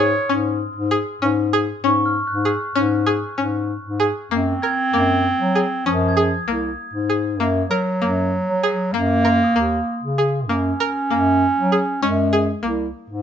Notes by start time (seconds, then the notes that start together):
Already playing: G#2 C#5 C6 D#6
0.00 G#4
0.29 G#2 C#4
0.76 G#2
0.91 G#4
1.22 G#2 C#4
1.53 G#4
1.84 G#2 C#4 C#6
2.06 F6
2.27 G#2 F#6
2.45 G#4
2.75 G#2 C#4
3.06 G#4
3.37 G#2 C#4
3.85 G#2
4.00 G#4
4.31 F#2 A#3 C4
4.62 A#4 G#6
4.93 F#2 A#3
5.40 F#3
5.55 G#4
5.86 F#2 F3 C#4 D#6
6.08 G#6
6.17 G#4
6.47 C2 A#3
6.94 G#2
7.10 G#4
7.40 F#2 A#3
7.70 F#3 A#4
8.02 F#2 A#3
8.47 F#3
8.63 G#4
8.93 F#2 A#3
9.25 A#4 C6
9.44 D#6
9.55 D#2 A#3
10.03 C#3
10.18 G#4
10.47 F#2 A#3 C#4
10.80 A#4
11.11 F#2 A#3
11.58 F#3
11.72 G#4
12.02 F#2 G#3 C#4
12.33 G#4
12.63 C2 A#3
13.10 G#2